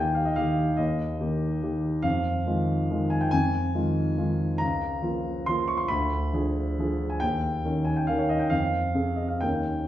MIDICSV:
0, 0, Header, 1, 2, 480
1, 0, Start_track
1, 0, Tempo, 412655
1, 905, Time_signature, 3, 2, 24, 8
1, 1385, Tempo, 425834
1, 5705, Tempo, 435098
1, 10025, Tempo, 478469
1, 10966, End_track
2, 0, Start_track
2, 0, Title_t, "Grand piano"
2, 0, Program_c, 0, 0
2, 0, Control_c, 0, 64, 127
2, 0, Note_on_c, 0, 39, 47
2, 0, Note_on_c, 0, 51, 36
2, 0, Note_on_c, 0, 58, 36
2, 0, Note_on_c, 0, 67, 34
2, 0, Note_on_c, 0, 77, 53
2, 0, Note_on_c, 0, 79, 68
2, 0, Note_on_c, 0, 80, 56
2, 169, Note_off_c, 0, 77, 0
2, 169, Note_on_c, 0, 77, 54
2, 182, Note_off_c, 0, 79, 0
2, 292, Note_on_c, 0, 75, 55
2, 302, Note_off_c, 0, 77, 0
2, 387, Note_off_c, 0, 58, 0
2, 388, Note_off_c, 0, 51, 0
2, 391, Note_off_c, 0, 67, 0
2, 417, Note_on_c, 0, 77, 77
2, 424, Note_off_c, 0, 75, 0
2, 433, Note_on_c, 0, 51, 34
2, 434, Note_on_c, 0, 58, 32
2, 443, Note_on_c, 0, 67, 40
2, 858, Note_off_c, 0, 51, 0
2, 859, Note_off_c, 0, 58, 0
2, 863, Note_off_c, 0, 67, 0
2, 892, Note_on_c, 0, 75, 65
2, 897, Note_off_c, 0, 77, 0
2, 911, Note_off_c, 0, 39, 0
2, 911, Note_on_c, 0, 39, 47
2, 925, Control_c, 0, 64, 0
2, 927, Note_off_c, 0, 80, 0
2, 1129, Control_c, 0, 64, 127
2, 1374, Note_off_c, 0, 39, 0
2, 1391, Note_on_c, 0, 51, 34
2, 1399, Note_on_c, 0, 58, 33
2, 1403, Note_on_c, 0, 67, 40
2, 1618, Note_off_c, 0, 75, 0
2, 1825, Note_off_c, 0, 51, 0
2, 1829, Note_off_c, 0, 58, 0
2, 1831, Note_off_c, 0, 67, 0
2, 1873, Note_on_c, 0, 51, 35
2, 1880, Note_on_c, 0, 58, 34
2, 1882, Note_on_c, 0, 67, 40
2, 2300, Note_off_c, 0, 51, 0
2, 2303, Note_off_c, 0, 58, 0
2, 2304, Note_off_c, 0, 67, 0
2, 2324, Note_on_c, 0, 77, 78
2, 2338, Note_on_c, 0, 41, 50
2, 2363, Control_c, 0, 64, 0
2, 2527, Control_c, 0, 64, 127
2, 2807, Note_off_c, 0, 41, 0
2, 2820, Note_on_c, 0, 51, 33
2, 2824, Note_on_c, 0, 56, 36
2, 2831, Note_on_c, 0, 65, 38
2, 3270, Note_off_c, 0, 51, 0
2, 3272, Note_off_c, 0, 56, 0
2, 3276, Note_off_c, 0, 65, 0
2, 3316, Note_on_c, 0, 51, 37
2, 3319, Note_on_c, 0, 56, 37
2, 3325, Note_on_c, 0, 65, 39
2, 3538, Note_on_c, 0, 80, 60
2, 3551, Note_off_c, 0, 77, 0
2, 3660, Note_on_c, 0, 79, 60
2, 3667, Note_off_c, 0, 80, 0
2, 3748, Note_off_c, 0, 51, 0
2, 3749, Note_off_c, 0, 56, 0
2, 3753, Note_off_c, 0, 65, 0
2, 3775, Note_on_c, 0, 80, 88
2, 3784, Note_off_c, 0, 79, 0
2, 3794, Note_on_c, 0, 41, 46
2, 3812, Control_c, 0, 64, 0
2, 3987, Control_c, 0, 64, 127
2, 4246, Note_off_c, 0, 41, 0
2, 4264, Note_on_c, 0, 51, 37
2, 4267, Note_on_c, 0, 56, 36
2, 4271, Note_on_c, 0, 65, 39
2, 4701, Note_off_c, 0, 51, 0
2, 4702, Note_off_c, 0, 56, 0
2, 4704, Note_off_c, 0, 65, 0
2, 4744, Note_on_c, 0, 51, 38
2, 4748, Note_on_c, 0, 56, 37
2, 4753, Note_on_c, 0, 65, 42
2, 5178, Note_off_c, 0, 51, 0
2, 5180, Note_off_c, 0, 56, 0
2, 5182, Note_off_c, 0, 65, 0
2, 5207, Note_on_c, 0, 82, 84
2, 5213, Note_off_c, 0, 80, 0
2, 5224, Note_on_c, 0, 37, 52
2, 5245, Control_c, 0, 64, 0
2, 5442, Control_c, 0, 64, 127
2, 5691, Note_off_c, 0, 37, 0
2, 5706, Note_on_c, 0, 53, 37
2, 5707, Note_on_c, 0, 58, 36
2, 5711, Note_on_c, 0, 65, 37
2, 6156, Note_off_c, 0, 53, 0
2, 6156, Note_off_c, 0, 58, 0
2, 6158, Note_off_c, 0, 65, 0
2, 6191, Note_on_c, 0, 84, 81
2, 6192, Note_off_c, 0, 82, 0
2, 6209, Note_on_c, 0, 53, 36
2, 6214, Note_on_c, 0, 58, 37
2, 6217, Note_on_c, 0, 65, 41
2, 6426, Note_on_c, 0, 85, 64
2, 6434, Note_off_c, 0, 84, 0
2, 6534, Note_on_c, 0, 84, 58
2, 6548, Note_off_c, 0, 85, 0
2, 6630, Note_off_c, 0, 53, 0
2, 6633, Note_off_c, 0, 58, 0
2, 6634, Note_off_c, 0, 65, 0
2, 6654, Note_on_c, 0, 83, 83
2, 6659, Note_off_c, 0, 84, 0
2, 6670, Note_on_c, 0, 38, 51
2, 6690, Control_c, 0, 64, 0
2, 6858, Control_c, 0, 64, 127
2, 7130, Note_off_c, 0, 38, 0
2, 7147, Note_on_c, 0, 53, 35
2, 7157, Note_on_c, 0, 62, 35
2, 7158, Note_on_c, 0, 68, 39
2, 7605, Note_off_c, 0, 53, 0
2, 7609, Note_off_c, 0, 62, 0
2, 7610, Note_off_c, 0, 68, 0
2, 7654, Note_on_c, 0, 53, 38
2, 7657, Note_on_c, 0, 62, 33
2, 7664, Note_on_c, 0, 68, 38
2, 7992, Note_on_c, 0, 80, 58
2, 7998, Note_off_c, 0, 83, 0
2, 8079, Note_off_c, 0, 53, 0
2, 8081, Note_off_c, 0, 62, 0
2, 8085, Note_off_c, 0, 68, 0
2, 8105, Note_on_c, 0, 79, 81
2, 8113, Note_off_c, 0, 80, 0
2, 8124, Note_on_c, 0, 39, 51
2, 8141, Control_c, 0, 64, 0
2, 8289, Control_c, 0, 64, 127
2, 8579, Note_off_c, 0, 39, 0
2, 8598, Note_on_c, 0, 51, 36
2, 8602, Note_on_c, 0, 61, 36
2, 8608, Note_on_c, 0, 70, 38
2, 8819, Note_on_c, 0, 80, 57
2, 8828, Note_off_c, 0, 79, 0
2, 8949, Note_off_c, 0, 80, 0
2, 8951, Note_on_c, 0, 79, 56
2, 9038, Note_off_c, 0, 51, 0
2, 9040, Note_off_c, 0, 61, 0
2, 9043, Note_off_c, 0, 70, 0
2, 9066, Note_on_c, 0, 77, 70
2, 9075, Note_off_c, 0, 79, 0
2, 9084, Note_on_c, 0, 51, 33
2, 9088, Note_on_c, 0, 61, 31
2, 9091, Note_on_c, 0, 70, 38
2, 9189, Note_on_c, 0, 73, 49
2, 9192, Note_off_c, 0, 77, 0
2, 9310, Note_on_c, 0, 75, 65
2, 9311, Note_off_c, 0, 73, 0
2, 9420, Note_on_c, 0, 79, 54
2, 9428, Note_off_c, 0, 75, 0
2, 9503, Note_off_c, 0, 51, 0
2, 9505, Note_off_c, 0, 61, 0
2, 9506, Note_off_c, 0, 70, 0
2, 9537, Note_on_c, 0, 77, 77
2, 9539, Note_off_c, 0, 79, 0
2, 9549, Note_on_c, 0, 41, 46
2, 9563, Control_c, 0, 64, 0
2, 9771, Control_c, 0, 64, 127
2, 10011, Note_off_c, 0, 41, 0
2, 10029, Note_on_c, 0, 48, 32
2, 10033, Note_on_c, 0, 60, 35
2, 10035, Note_on_c, 0, 68, 35
2, 10245, Note_on_c, 0, 75, 43
2, 10252, Note_off_c, 0, 77, 0
2, 10369, Note_off_c, 0, 75, 0
2, 10370, Note_on_c, 0, 77, 49
2, 10459, Note_off_c, 0, 48, 0
2, 10461, Note_off_c, 0, 60, 0
2, 10462, Note_off_c, 0, 68, 0
2, 10493, Note_on_c, 0, 79, 66
2, 10494, Note_off_c, 0, 77, 0
2, 10505, Note_on_c, 0, 51, 31
2, 10507, Note_on_c, 0, 39, 40
2, 10513, Note_on_c, 0, 61, 30
2, 10516, Control_c, 0, 64, 0
2, 10518, Note_on_c, 0, 70, 29
2, 10685, Control_c, 0, 64, 127
2, 10948, Note_off_c, 0, 51, 0
2, 10952, Note_off_c, 0, 61, 0
2, 10955, Note_off_c, 0, 70, 0
2, 10966, Note_off_c, 0, 39, 0
2, 10966, Note_off_c, 0, 79, 0
2, 10966, End_track
0, 0, End_of_file